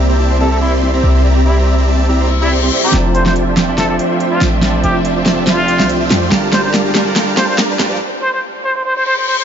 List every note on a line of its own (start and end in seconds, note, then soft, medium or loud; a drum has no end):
0.00 1.02 C2 medium
0.00 2.90 C3 medium
0.00 2.90 G3 medium
0.00 2.90 A#3 medium
0.00 1.72 D4 medium
0.00 0.19 E4 medium
0.00 2.90 E4 medium
0.00 1.16 A#4 medium
0.00 0.30 C5 medium
0.00 0.98 D5 medium
0.00 0.40 E5 medium
0.09 0.17 C4 medium
0.09 0.17 G4 medium
0.09 0.17 D5 medium
0.09 0.17 E5 medium
0.09 0.17 A#5 medium
0.19 0.37 C4 medium
0.19 0.82 E4 medium
0.19 0.37 G4 medium
0.19 0.37 D5 medium
0.19 0.37 E5 medium
0.19 0.37 A5 medium
0.30 0.93 C5 medium
0.40 0.59 C4 medium
0.40 0.59 G4 medium
0.40 0.48 A4 medium
0.40 0.59 D5 medium
0.40 1.03 E5 medium
0.40 0.59 E5 medium
0.40 0.59 A#5 loud
0.52 0.58 A4 medium
0.61 0.91 C4 medium
0.61 0.72 E4 medium
0.61 0.91 G4 medium
0.61 0.91 D5 medium
0.61 0.91 E5 medium
0.61 0.91 C6 loud
0.82 1.45 E4 medium
0.94 1.12 C4 medium
0.94 1.12 G4 medium
0.94 1.57 C5 medium
0.94 1.12 D5 medium
0.94 1.12 E5 medium
0.94 1.12 A#5 loud
1.04 2.71 C2 medium
1.04 1.67 E5 medium
1.15 1.22 C4 medium
1.15 1.22 G4 medium
1.15 1.22 D5 medium
1.15 1.22 E5 medium
1.15 1.22 C6 medium
1.25 1.43 C4 loud
1.25 1.43 G4 medium
1.25 1.43 D5 medium
1.25 1.43 E5 medium
1.25 1.43 A#5 loud
1.46 1.75 C4 medium
1.46 1.56 E4 medium
1.46 2.09 E4 medium
1.46 1.75 G4 medium
1.46 1.75 D5 medium
1.46 1.75 E5 medium
1.46 1.75 A#5 loud
1.57 2.20 C5 medium
1.67 3.39 E5 medium
1.78 1.86 C4 medium
1.78 1.86 G4 medium
1.78 1.86 D5 medium
1.78 1.86 E5 medium
1.78 1.86 A#5 loud
1.88 2.06 C4 medium
1.88 2.06 G4 medium
1.88 2.06 D5 medium
1.88 2.06 E5 medium
1.88 2.06 A5 medium
2.09 2.28 C4 medium
2.09 2.30 E4 medium
2.09 2.28 G4 medium
2.09 2.28 D5 medium
2.09 2.28 E5 medium
2.09 2.28 A#5 loud
2.09 reverse cymbal medium
2.20 2.51 C5 medium
2.30 4.92 E4 loud
2.41 2.49 C4 medium
2.41 2.51 E4 medium
2.41 2.49 G4 medium
2.41 2.49 D5 medium
2.41 2.49 E5 medium
2.41 2.49 A#5 loud
2.51 2.60 C4 medium
2.51 2.60 G4 medium
2.51 2.62 C5 loud
2.51 2.60 D5 medium
2.51 2.60 E5 medium
2.51 2.60 A#5 medium
2.63 2.70 C4 loud
2.63 2.70 G4 medium
2.63 2.72 C5 medium
2.63 2.70 D5 medium
2.63 2.70 E5 medium
2.63 2.70 C6 loud
2.72 2.81 C4 medium
2.72 2.81 G4 medium
2.72 4.71 C5 medium
2.72 2.81 D5 medium
2.72 2.81 E5 medium
2.72 2.81 C6 loud
2.84 2.92 C4 medium
2.84 2.92 G4 medium
2.84 2.94 G4 medium
2.84 2.92 D5 medium
2.84 2.92 E5 medium
2.84 2.92 A#5 loud
2.84 4.24 A#5 loud
2.92 3.98 F1 loud
2.92 3.54 F3 medium
2.92 6.28 F3 medium
2.92 6.28 A3 medium
2.92 3.54 C4 medium
2.92 3.55 D4 medium
2.92 3.55 E4 medium
2.92 3.12 F4 loud
2.92 3.55 G4 medium
2.92 3.56 A4 medium
2.92 3.12 C5 medium
2.92 3.12 D5 medium
2.92 6.28 E5 medium
2.92 3.12 E5 medium
2.92 3.12 G5 medium
2.92 3.12 A5 loud
2.92 snare soft
2.92 closed hi-hat medium
2.92 riser medium
3.15 3.45 F4 medium
3.15 3.44 C5 medium
3.15 3.22 C5 medium
3.15 3.45 D5 medium
3.15 3.45 E5 medium
3.15 3.45 G5 medium
3.15 3.45 A5 loud
3.15 closed hi-hat medium
3.26 3.32 C5 medium
3.26 snare soft
3.36 closed hi-hat medium
3.47 3.55 F4 medium
3.47 3.55 C5 medium
3.47 3.55 D5 medium
3.47 3.55 E5 medium
3.47 3.55 G5 medium
3.47 3.55 A5 medium
3.56 3.65 F3 loud
3.56 3.65 C4 medium
3.56 3.66 D4 medium
3.56 3.66 E4 medium
3.56 3.75 F4 medium
3.56 3.66 G4 loud
3.56 3.66 A4 loud
3.56 3.75 C5 medium
3.56 3.75 D5 medium
3.56 3.75 E5 medium
3.56 3.75 G5 medium
3.56 3.75 A5 medium
3.56 snare medium
3.56 closed hi-hat medium
3.66 4.59 F3 medium
3.66 4.60 C4 medium
3.66 4.60 D4 medium
3.66 4.61 E4 medium
3.66 4.61 G4 medium
3.66 4.61 A4 medium
3.78 3.97 F4 medium
3.78 3.85 A4 medium
3.78 3.97 C5 medium
3.78 3.97 D5 medium
3.78 3.97 E5 medium
3.78 3.97 G5 medium
3.78 3.97 A5 loud
3.78 snare medium
3.78 closed hi-hat medium
3.89 3.96 A4 medium
3.99 4.29 F4 medium
3.99 4.29 C5 medium
3.99 4.29 D5 medium
3.99 4.29 E5 medium
3.99 4.29 G5 medium
3.99 4.29 C6 loud
3.99 closed hi-hat medium
4.20 closed hi-hat medium
4.32 4.50 F4 medium
4.32 4.41 F4 medium
4.32 4.50 C5 medium
4.32 4.50 D5 medium
4.32 4.50 E5 medium
4.32 4.50 G5 medium
4.32 4.50 A5 loud
4.41 4.83 A1 medium
4.41 snare medium
4.41 closed hi-hat medium
4.53 4.60 F4 medium
4.53 4.60 C5 medium
4.53 4.60 D5 medium
4.53 4.60 E5 medium
4.53 4.60 G5 medium
4.53 4.60 C6 medium
4.61 5.23 F3 medium
4.61 5.23 C4 medium
4.61 5.24 D4 medium
4.61 5.24 E4 medium
4.61 4.81 F4 loud
4.61 5.24 G4 medium
4.61 5.25 A4 loud
4.61 4.81 C5 medium
4.61 4.81 D5 medium
4.61 4.81 E5 medium
4.61 4.81 G5 medium
4.61 4.81 A5 loud
4.61 snare medium
4.61 closed hi-hat medium
4.84 5.81 F1 medium
4.84 5.13 F4 medium
4.84 4.95 G4 medium
4.84 5.13 C5 medium
4.84 5.13 D5 medium
4.84 5.13 E5 medium
4.84 5.14 G5 medium
4.84 5.14 A5 loud
4.84 closed hi-hat medium
5.05 closed hi-hat medium
5.16 5.24 F4 medium
5.16 5.24 C5 medium
5.16 5.24 D5 medium
5.16 5.24 E5 medium
5.16 5.24 G5 medium
5.16 5.24 A5 medium
5.25 5.34 F3 medium
5.25 5.34 C4 medium
5.25 5.35 D4 medium
5.25 5.35 E4 medium
5.25 5.44 F4 medium
5.25 5.35 G4 medium
5.25 5.35 A4 medium
5.25 5.44 C5 medium
5.25 5.44 D5 medium
5.25 5.44 E5 medium
5.25 5.44 G5 medium
5.25 5.44 A5 medium
5.25 snare medium
5.25 closed hi-hat medium
5.35 6.28 F3 medium
5.35 6.29 C4 medium
5.35 6.29 D4 medium
5.35 6.30 G4 medium
5.35 6.30 E5 medium
5.39 6.30 A4 medium
5.47 5.66 F4 medium
5.47 5.90 F4 medium
5.47 5.66 C5 medium
5.47 5.66 D5 medium
5.47 5.66 E5 medium
5.47 5.66 G5 medium
5.47 5.66 A5 loud
5.47 snare medium
5.47 closed hi-hat medium
5.68 5.98 F4 loud
5.68 5.98 C5 medium
5.68 5.98 D5 medium
5.68 5.98 E5 medium
5.68 5.98 G5 medium
5.68 5.98 C6 loud
5.68 closed hi-hat medium
5.80 6.09 C2 loud
5.80 snare medium
5.89 closed hi-hat medium
6.00 6.19 F4 medium
6.00 6.19 C5 medium
6.00 6.19 D5 medium
6.00 6.19 E5 medium
6.00 6.19 G5 medium
6.00 6.19 A5 loud
6.11 6.30 F2 medium
6.11 snare medium
6.11 closed hi-hat medium
6.22 6.29 F4 medium
6.22 6.29 C5 medium
6.22 6.29 D5 medium
6.22 6.29 E5 medium
6.22 6.29 G5 medium
6.22 6.29 C6 medium
6.30 7.36 G1 loud
6.30 6.92 G3 medium
6.30 7.99 G3 medium
6.30 7.99 A#3 medium
6.30 6.92 D4 medium
6.30 7.99 D4 medium
6.30 6.93 F4 medium
6.30 7.99 F4 medium
6.30 6.50 G4 medium
6.30 6.93 A4 medium
6.30 6.50 D5 medium
6.30 6.50 F5 medium
6.30 6.50 A5 medium
6.30 6.50 A#5 loud
6.30 snare medium
6.30 closed hi-hat medium
6.34 6.94 A#4 medium
6.53 6.83 G4 medium
6.53 6.60 C5 medium
6.53 6.83 D5 medium
6.53 6.83 F5 medium
6.53 6.83 A5 medium
6.53 6.83 A#5 loud
6.53 snare medium
6.53 closed hi-hat medium
6.64 6.70 C5 medium
6.74 snare medium
6.74 closed hi-hat medium
6.85 6.93 G4 medium
6.85 6.93 D5 medium
6.85 6.93 F5 medium
6.85 6.93 A5 medium
6.85 6.93 A#5 medium
6.94 7.03 G3 medium
6.94 7.03 D4 medium
6.94 7.04 F4 medium
6.94 7.13 G4 medium
6.94 7.04 A4 medium
6.94 7.04 A#4 loud
6.94 7.13 D5 medium
6.94 7.13 F5 medium
6.94 7.13 A5 medium
6.94 7.13 A#5 medium
6.94 snare medium
6.94 closed hi-hat medium
7.05 7.13 G3 medium
7.05 7.14 D4 medium
7.05 7.15 F4 medium
7.05 7.15 A4 medium
7.05 7.16 A#4 medium
7.14 7.76 G3 medium
7.14 7.77 D4 medium
7.14 7.77 F4 medium
7.14 7.35 G4 medium
7.14 7.78 A4 medium
7.14 7.35 D5 medium
7.14 7.35 F5 medium
7.14 7.35 A5 medium
7.14 7.35 A#5 loud
7.14 snare medium
7.14 closed hi-hat medium
7.18 7.78 A#4 medium
7.37 7.67 G4 medium
7.37 7.45 C5 medium
7.37 7.67 D5 medium
7.37 7.67 F5 medium
7.37 7.67 A5 medium
7.37 7.67 A#5 loud
7.37 snare medium
7.37 closed hi-hat medium
7.49 7.55 C5 medium
7.58 snare medium
7.58 closed hi-hat medium
7.70 7.77 G4 medium
7.70 7.77 D5 medium
7.70 7.77 F5 medium
7.70 7.77 A5 medium
7.70 7.77 A#5 medium
7.79 8.01 A#1 medium
7.79 7.88 G3 medium
7.79 7.88 D4 medium
7.79 7.88 F4 medium
7.79 7.98 G4 medium
7.79 7.88 A4 medium
7.79 7.89 A#4 loud
7.79 7.98 D5 medium
7.79 7.98 F5 medium
7.79 7.98 A5 medium
7.79 7.98 A#5 medium
7.79 snare medium
7.79 closed hi-hat medium
7.89 7.98 G3 medium
7.89 7.99 D4 medium
7.89 7.99 F4 medium
7.89 8.00 A4 medium
7.93 8.00 A#4 medium
8.22 8.29 C5 medium
8.34 8.40 C5 medium
8.64 8.71 C5 medium
8.76 8.82 C5 medium
8.85 8.92 C5 medium
8.85 reverse cymbal medium
8.97 9.03 C5 medium
9.06 9.14 C5 medium
9.18 9.24 C5 medium
9.28 9.35 C5 medium
9.39 9.44 C5 medium